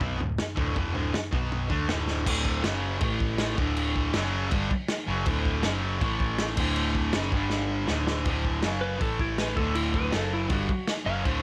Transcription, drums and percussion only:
0.01 kick loud
0.01 floor tom medium
0.20 floor tom medium
0.38 snare loud
0.38 floor tom medium
0.57 kick loud
0.57 floor tom medium
0.76 kick loud
0.76 floor tom medium
0.95 floor tom medium
1.14 snare loud
1.14 floor tom medium
1.33 kick loud
1.33 floor tom medium
1.52 floor tom medium
1.70 kick loud
1.70 floor tom medium
1.89 snare loud
1.89 floor tom medium
2.07 snare medium
2.26 kick loud
2.26 crash loud
2.26 crash medium
2.45 kick medium
2.64 snare loud
2.64 crash medium
3.01 kick loud
3.01 crash medium
3.20 kick medium
3.38 snare loud
3.38 crash medium
3.58 kick loud
3.77 crash medium
3.96 kick medium
4.14 snare loud
4.14 crash medium
4.51 kick loud
4.51 crash medium
4.71 kick medium
4.88 snare loud
4.88 crash medium
5.26 kick loud
5.26 crash medium
5.45 kick medium
5.63 snare loud
5.63 crash medium
6.01 kick loud
6.01 crash medium
6.20 kick medium
6.38 snare loud
6.38 crash medium
6.57 kick loud
6.57 crash loud
6.76 crash medium
6.95 kick medium
7.13 snare loud
7.13 crash medium
7.32 kick loud
7.50 snare medium
7.88 snare loud
8.07 snare medium
8.25 kick loud
8.25 crash medium
8.45 kick medium
8.63 snare loud
8.63 crash medium
9.01 kick loud
9.01 crash medium
9.19 kick medium
9.38 snare loud
9.38 crash medium
9.57 kick loud
9.75 crash medium
9.94 kick medium
10.12 snare loud
10.12 crash medium
10.50 kick loud
10.50 crash medium
10.69 kick medium
10.87 snare loud
10.87 crash medium
11.25 kick loud
11.25 crash medium

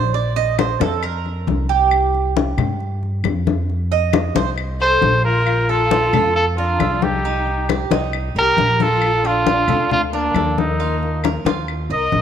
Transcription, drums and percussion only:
0.15 high conga soft
0.37 high conga soft
0.59 high conga medium
0.59 claves medium
0.81 high conga medium
1.03 high conga soft
1.03 claves medium
1.26 high conga soft
1.48 high conga medium
1.91 high conga soft
1.91 claves medium
2.15 high conga soft
2.37 high conga medium
2.58 high conga soft
2.58 low conga medium
2.58 claves medium
2.80 high conga soft
3.03 high conga soft
3.24 high conga medium
3.24 claves medium
3.47 high conga medium
3.69 high conga soft
3.92 high conga soft
4.13 high conga loud
4.13 claves medium
4.36 high conga loud
4.58 high conga soft
4.58 claves medium
4.80 high conga soft
5.02 high conga medium
5.47 high conga soft
5.47 claves medium
5.69 high conga soft
5.91 high conga medium
6.14 high conga soft
6.14 low conga medium
6.14 claves medium
6.36 high conga soft
6.58 high conga soft
6.80 high conga medium
6.80 claves medium
7.02 high conga medium
7.24 high conga soft
7.47 high conga soft
7.69 high conga medium
7.69 claves medium
7.91 high conga loud
8.13 high conga soft
8.13 claves medium
8.36 high conga soft
8.58 high conga medium
8.80 high conga medium
9.02 high conga soft
9.02 claves medium
9.24 high conga soft
9.47 high conga medium
9.68 high conga soft
9.68 low conga medium
9.68 claves medium
9.91 high conga soft
9.91 low conga medium
10.14 high conga soft
10.35 high conga medium
10.35 claves medium
10.58 high conga medium
10.81 high conga soft
11.03 high conga soft
11.24 high conga medium
11.24 claves medium
11.46 high conga loud
11.68 high conga soft
11.68 claves medium
11.90 high conga soft
12.12 high conga medium

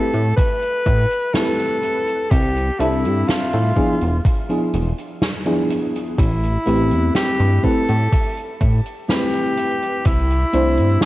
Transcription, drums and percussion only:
0.13 closed hi-hat medium
0.38 kick loud
0.38 closed hi-hat loud
0.62 closed hi-hat medium
0.86 kick loud
0.86 closed hi-hat medium
1.11 closed hi-hat medium
1.34 snare loud
1.34 closed hi-hat loud
1.59 closed hi-hat medium
1.83 closed hi-hat medium
2.07 closed hi-hat medium
2.31 kick loud
2.31 closed hi-hat medium
2.57 closed hi-hat medium
2.80 closed hi-hat medium
3.05 closed hi-hat medium
3.28 snare loud
3.28 closed hi-hat medium
3.53 closed hi-hat medium
3.77 kick medium
4.01 closed hi-hat soft
4.25 kick loud
4.25 closed hi-hat medium
4.50 closed hi-hat soft
4.74 closed hi-hat medium
4.98 closed hi-hat medium
5.22 snare loud
5.22 closed hi-hat medium
5.46 closed hi-hat medium
5.70 closed hi-hat medium
5.96 closed hi-hat medium
6.19 kick loud
6.19 closed hi-hat medium
6.44 closed hi-hat medium
6.67 closed hi-hat medium
6.91 closed hi-hat soft
7.15 snare loud
7.15 closed hi-hat medium
7.40 closed hi-hat medium
7.64 kick medium
7.88 closed hi-hat medium
8.12 kick loud
8.12 closed hi-hat loud
8.36 closed hi-hat medium
8.60 kick loud
8.60 closed hi-hat medium
8.85 closed hi-hat medium
9.09 snare loud
9.09 closed hi-hat medium
9.33 closed hi-hat medium
9.57 closed hi-hat medium
9.82 closed hi-hat medium
10.05 kick loud
10.05 closed hi-hat loud
10.31 closed hi-hat medium
10.53 closed hi-hat medium
10.78 closed hi-hat medium
11.01 snare loud
11.01 closed hi-hat medium

